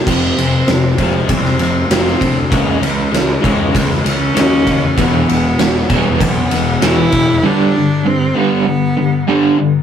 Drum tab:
CC |x---------------|----------------|----------------|----------------|
RD |--x-x-x-x-x-x-x-|x-x-x-x-x-x-x-x-|x-x-x-x-x-x-x-x-|----------------|
SD |----o----o--oo--|----o----o--o---|----o-------o---|----------------|
BD |o-----o-o-----o-|o-----o-o-----o-|o-----o-o-----o-|----------------|